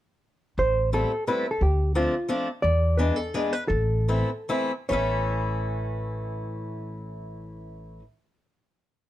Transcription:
0.58 1.03 A1 medium
0.58 0.94 C5 medium
0.93 1.11 G3 soft
0.93 1.11 A3 soft
0.93 1.11 C4 soft
0.93 1.11 E4 soft
0.93 1.28 A4 medium
1.27 1.45 G3 medium
1.27 1.45 A3 soft
1.27 1.45 C4 soft
1.27 1.46 E4 medium
1.27 1.51 B4 medium
1.51 1.62 A4 medium
1.61 2.06 D2 medium
1.61 1.96 G4 medium
1.95 2.13 F3 soft
1.95 2.13 A3 soft
1.95 2.13 C4 soft
1.95 2.13 D4 medium
1.95 2.28 F4 medium
2.29 2.47 F3 medium
2.29 2.47 A3 soft
2.29 2.47 C4 soft
2.29 2.48 D4 medium
2.62 3.09 E2 medium
2.62 2.99 D5 medium
2.97 3.17 E3 medium
2.97 3.17 G#3 medium
2.97 3.17 B3 soft
2.97 3.17 D4 medium
2.97 3.16 B4 medium
3.16 3.34 A4 medium
3.34 3.53 E3 medium
3.34 3.53 G#3 soft
3.34 3.53 B3 soft
3.34 3.53 D4 medium
3.34 3.53 G#4 medium
3.53 3.68 B4 medium
3.68 4.20 A1 medium
3.68 4.65 A4 medium
4.08 4.29 E3 soft
4.08 4.29 A3 soft
4.08 4.29 C4 soft
4.08 4.29 E4 medium
4.49 4.71 E3 medium
4.49 4.71 A3 soft
4.49 4.71 C4 medium
4.49 4.71 E4 medium
4.89 8.01 A1 medium
4.89 7.99 E3 medium
4.89 8.01 A3 medium
4.89 8.02 C#4 medium
4.89 7.99 C#5 medium
4.93 8.03 E4 medium

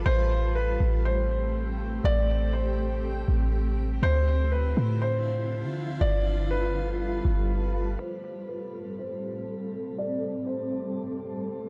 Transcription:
0.06 0.77 A1 loud
0.06 3.99 A3 medium
0.06 5.97 C4 medium
0.06 3.99 G4 medium
0.06 0.52 C5 loud
0.55 1.02 B4 medium
0.80 2.00 A1 loud
1.05 2.00 C5 medium
2.04 3.24 A1 loud
2.04 2.51 D5 loud
2.53 3.49 C5 medium
3.28 4.00 A1 loud
4.03 4.74 D2 loud
4.03 5.99 D3 medium
4.03 5.99 E4 medium
4.03 7.95 F4 medium
4.03 4.49 C5 loud
4.52 4.99 B4 medium
4.77 5.65 A2 loud
5.02 5.97 C5 medium
5.64 5.99 D3 loud
6.01 7.21 G1 loud
6.01 7.97 G3 medium
6.01 7.97 A4 medium
6.01 7.97 B4 medium
6.01 6.48 D5 loud
6.51 7.95 B4 medium
7.25 7.96 G1 loud
7.99 11.69 A2 medium
7.99 11.69 G3 medium
7.99 11.69 C4 medium
7.99 9.96 A4 medium
7.99 8.46 C5 loud
8.49 8.95 B4 medium
8.99 9.94 C5 medium
9.98 11.69 A4 medium
9.98 10.45 D5 loud
10.47 11.42 C5 medium

